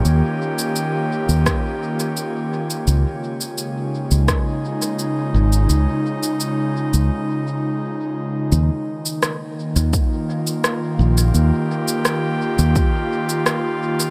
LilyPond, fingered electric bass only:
\new Staff \with { instrumentName = "Fingered electric bass" } { \clef bass \time 4/4 \key ees \mixolydian \tempo 4 = 85 ees,16 r4. ees,16 r2 | des,16 r4. des,16 r4. aes,,8 | des,16 r4. des,16 r2 | ees,16 r4. ees,16 r4. bes,,8 |
ees,16 r4. ees,16 r2 | }